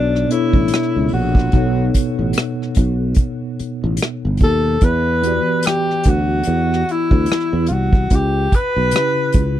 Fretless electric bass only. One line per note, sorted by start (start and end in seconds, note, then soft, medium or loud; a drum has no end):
0.00 0.24 B1 loud
0.54 0.69 A1 medium
0.96 1.10 C#2 medium
1.13 1.48 A#1 medium
1.54 1.89 B1 loud
2.19 2.33 A1 medium
2.77 3.12 B1 medium
3.60 muted fretless electric bass stroke soft
3.84 3.98 A1 medium
4.25 4.42 G1 medium
4.41 4.76 D#2 medium
4.82 5.38 E2 loud
6.06 6.41 D2 medium
6.47 6.82 E2 medium
7.11 7.26 D2 medium
7.53 7.67 E2 medium
7.70 8.05 C2 medium
8.11 8.46 C#2 loud
8.76 8.91 B1 medium
9.35 9.60 C#2 medium